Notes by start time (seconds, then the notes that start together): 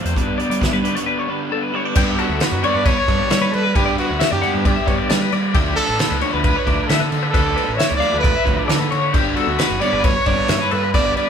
Already playing: F2 C3 F3 G3 A3 C4 G4
0.05 E2 C5, closed hi-hat
0.15 G2 D3 G3 B3 D4 B4, kick, closed hi-hat
0.38 G3 B3 D4 D5, closed hi-hat
0.50 G3 D5, closed hi-hat
0.60 D3 G3 B3 D4 E4 E5, kick, snare, closed hi-hat
0.72 G3 F#4 B4
0.83 G2 D3 G3 B3 D4, closed hi-hat
0.95 C#5, closed hi-hat
1.05 D3 G3 B3 D4 B4
1.19 C#5
1.27 G2 D3 G3 B3 D4 B4
1.49 D3 G3 B3 D4 A4
1.63 B4
1.72 G3 B3 D4 E4 C#5
1.85 F#4 D5
1.95 G2 D3 G3 B3 D4 G4, kick, crash
2.19 F#4 A4, crash
2.29 D2
2.40 F#4 B4, snare, crash
2.52 F#2
2.63 D3 G3 B3 D4 C#5 D5, crash
2.74 G2 B4
2.85 B4 C#5, kick, crash
2.97 C#5
3.08 G2 D3 G3 B3 D4 D5, kick, crash
3.30 G3 E5, snare, crash
3.42 B4
3.52 G3 A4 B4, crash
3.63 B4
3.74 G2 D3 G3 B3 D4 G4 B4, kick, crash
3.86 D5
3.97 F#4 B4, crash
4.10 D2
4.20 E5, snare, crash
4.31 F#2 G4 D5
4.42 D3 G3 B3 D4 F#5, crash
4.53 G2 B4
4.65 G4 D5, kick, crash
4.76 E5
4.86 G2 D3 G3 B3 D4 C#5, kick, crash
4.98 D5
5.09 G3 D5, snare, crash
5.22 B4
5.32 G3 D5, crash
5.54 D2 D3 F3 A3 D4 G4, kick, crash
5.76 A4, crash
5.89 A1
5.99 B4, snare, crash
6.11 C#2
6.21 D3 F3 A3 D4 C#5, crash
6.33 D2 B4
6.44 B4, kick, crash
6.56 C#5
6.66 D2 D3 F3 A3 D4 D5, kick, crash
6.87 D3 A4 E5, snare, crash
7.00 B4
7.11 D3 A4, crash
7.23 B4
7.30 D3 F3 A4 B4, kick
7.34 D2 A3 D4, crash
7.46 D5
7.56 B4, crash
7.69 A1
7.75 C#5 E5
7.79 snare, crash
7.89 C#2 D5
7.97 D5 F5
8.01 D3 F3 A3 D4, crash
8.12 D2 B4
8.19 B4 D5
8.24 kick, crash
8.35 E5
8.45 D2 D3 F3 A3 D4 C#5, kick, crash
8.57 D5
8.66 D3 A4 D5, crash
8.70 snare
8.79 B4
8.91 D3 C#5, crash
9.13 G1 D3 G3 B3 D4 G4, kick, crash
9.36 F#4 A4, crash
9.47 D2
9.58 B4, snare, crash
9.70 F#1
9.81 D3 G3 B3 D4 C#5 D5, crash
9.93 G1 B4
10.04 B4 C#5, kick, crash
10.16 C#5
10.26 G1 D3 G3 B3 D4 D5, kick, crash
10.48 G2 E5, snare, crash
10.61 B4
10.71 G2 A4 B4, crash
10.84 B4
10.94 G1 D3 G3 B3 D4 B4 D5, kick, crash
11.05 D5
11.16 B4 D5, crash